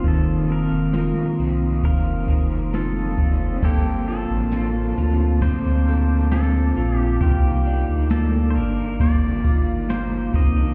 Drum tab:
CC |--------|x-------|--------|
RD |--------|-xxxxxxx|xxxxxxxx|
HH |xxxxxxxx|--------|--------|
TB |--------|--x---x-|--x---x-|
SD |--o---o-|--o---o-|--o---o-|
BD |o---oo-o|o---o---|o---oo-o|